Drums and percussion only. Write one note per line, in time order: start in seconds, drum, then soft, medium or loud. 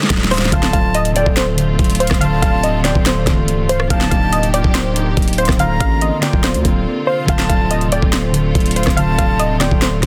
0.03 snare medium
0.10 kick loud
0.10 snare loud
0.10 closed hi-hat medium
0.17 snare medium
0.24 snare loud
0.31 snare medium
0.31 open hi-hat medium
0.38 snare loud
0.45 snare medium
0.52 kick loud
0.52 closed hi-hat medium
0.63 finger snap medium
0.63 snare loud
0.73 kick medium
0.73 closed hi-hat medium
0.95 closed hi-hat medium
1.05 closed hi-hat soft
1.16 closed hi-hat medium
1.26 kick loud
1.37 finger snap loud
1.37 snare loud
1.37 closed hi-hat medium
1.58 closed hi-hat medium
1.79 kick loud
1.79 closed hi-hat soft
1.84 closed hi-hat medium
1.90 closed hi-hat medium
1.95 closed hi-hat medium
2.00 closed hi-hat medium
2.07 kick medium
2.07 cross-stick loud
2.07 snare medium
2.07 closed hi-hat medium
2.14 closed hi-hat medium
2.21 closed hi-hat medium
2.42 kick medium
2.42 closed hi-hat medium
2.63 closed hi-hat medium
2.85 finger snap medium
2.85 snare medium
2.85 closed hi-hat medium
2.95 kick medium
3.06 finger snap loud
3.06 snare loud
3.06 closed hi-hat medium
3.27 kick medium
3.27 snare medium
3.27 closed hi-hat medium
3.48 closed hi-hat medium
3.69 closed hi-hat medium
3.80 cross-stick loud
3.90 kick loud
3.90 closed hi-hat medium
4.01 finger snap medium
4.01 snare medium
4.11 kick medium
4.11 closed hi-hat medium
4.33 closed hi-hat medium
4.43 closed hi-hat soft
4.54 closed hi-hat medium
4.64 kick loud
4.75 finger snap loud
4.75 snare loud
4.75 closed hi-hat medium
4.96 closed hi-hat medium
5.17 kick loud
5.17 closed hi-hat soft
5.22 closed hi-hat medium
5.28 closed hi-hat medium
5.33 closed hi-hat medium
5.38 closed hi-hat medium
5.45 kick medium
5.45 cross-stick loud
5.45 snare medium
5.45 closed hi-hat medium
5.52 closed hi-hat medium
5.59 closed hi-hat medium
5.80 kick medium
5.80 closed hi-hat medium
6.01 closed hi-hat medium
6.23 finger snap medium
6.23 snare medium
6.23 closed hi-hat medium
6.33 kick loud
6.44 finger snap medium
6.44 snare loud
6.44 closed hi-hat medium
6.54 closed hi-hat medium
6.65 kick medium
6.65 closed hi-hat medium
7.28 kick loud
7.28 closed hi-hat medium
7.39 finger snap medium
7.39 snare loud
7.50 kick medium
7.50 closed hi-hat medium
7.71 closed hi-hat medium
7.81 closed hi-hat soft
7.92 closed hi-hat medium
8.02 kick medium
8.13 finger snap loud
8.13 snare loud
8.13 closed hi-hat medium
8.34 closed hi-hat medium
8.55 kick loud
8.55 closed hi-hat soft
8.60 closed hi-hat medium
8.66 closed hi-hat medium
8.71 closed hi-hat medium
8.76 closed hi-hat medium
8.83 kick medium
8.83 cross-stick loud
8.83 snare medium
8.83 closed hi-hat medium
8.90 closed hi-hat medium
8.97 closed hi-hat medium
9.19 kick medium
9.19 closed hi-hat medium
9.40 closed hi-hat medium
9.61 finger snap medium
9.61 snare medium
9.61 closed hi-hat medium
9.71 kick loud
9.82 finger snap loud
9.82 snare loud
9.82 closed hi-hat medium
10.03 kick medium
10.03 snare medium
10.03 closed hi-hat medium